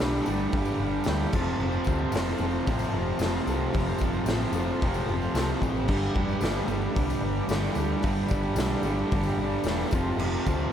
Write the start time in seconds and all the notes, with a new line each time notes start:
Already playing: G2 D4 G4 B4
0.00 B1 D3 G3, snare
0.26 G1 D3 G3, tambourine
0.30 G2
0.39 tambourine
0.51 G1 G2 D3, kick, open hi-hat, tambourine
0.56 G3
0.65 tambourine
0.79 G1 G3 F5
0.83 D3
1.04 D2 G2, snare, open hi-hat, tambourine
1.09 D3 G3 G5
1.33 F1 F3 F4 A4 C5 A5, kick, tambourine, crash
1.37 F2 C3
1.60 F1 F2, tambourine
1.64 C3 F3
1.72 tambourine
1.84 D2 F3, kick, tambourine
1.92 C3
1.98 tambourine
2.12 F1 F2 C3, snare, open hi-hat, tambourine
2.18 F3
2.26 tambourine
2.38 F1 C3 F3, tambourine
2.45 F2
2.51 tambourine
2.66 A1 F2 C3, kick, open hi-hat, tambourine
2.70 F3
2.79 tambourine
2.92 F1 F3
2.97 C3
3.17 F1 F2 C3, open hi-hat, tambourine
3.22 F3, snare
3.47 C2 F3, tambourine
3.51 C3
3.73 F1 F2 C3, kick, open hi-hat, tambourine
3.78 F3
3.86 tambourine
3.98 F1 F3, kick, tambourine
4.06 C3
4.13 tambourine
4.26 A1 F2 C3, snare, open hi-hat, tambourine
4.31 F3
4.41 tambourine
4.52 F1 F3, tambourine
4.56 F2 C3
4.81 F1 F2 C3 F3, kick, open hi-hat
4.94 tambourine
5.07 F1 F3, tambourine
5.14 C3
5.22 tambourine
5.34 C2 F2, snare, open hi-hat, tambourine
5.39 C3 F3
5.49 tambourine
5.62 A1 F3, kick, tambourine
5.68 C3
5.77 tambourine
5.88 G1 G2 D3 D4 G4 B4, kick, crash, tambourine
5.92 G3
6.03 tambourine
6.15 F1 D3 G3, kick
6.28 tambourine
6.39 G1 G2 D3, open hi-hat, tambourine
6.43 G3, snare
6.56 tambourine
6.65 G1 D3 G3, tambourine
6.70 G2
6.81 tambourine
6.93 C2 G2 D3, kick, open hi-hat, tambourine
6.98 G3
7.10 tambourine
7.19 G1 G3
7.24 D3
7.46 G1 G2 D3, tambourine
7.50 G3, snare, open hi-hat
7.73 D2 G3, tambourine
7.78 D3
8.01 G1 G2 D3, kick, open hi-hat, tambourine
8.05 G3
8.16 tambourine
8.28 G1 G3, kick, tambourine
8.32 D3
8.43 tambourine
8.55 B1 G2, snare, open hi-hat, tambourine
8.60 D3 G3
8.83 G1 D3 G3, tambourine
8.89 G2
8.98 tambourine
9.10 G1 G2 D3, kick, open hi-hat, tambourine
9.15 G3
9.23 tambourine
9.37 G1 G3
9.43 D3
9.64 E1 G2, snare, open hi-hat, tambourine
9.68 D3 G3
9.91 F1 C3 F3 F4 A4, kick, tambourine
9.95 F2 C5
10.18 F1 F2 C3, tambourine, crash
10.23 F3
10.33 tambourine
10.46 D2 F3, kick, tambourine
10.51 C3
10.59 tambourine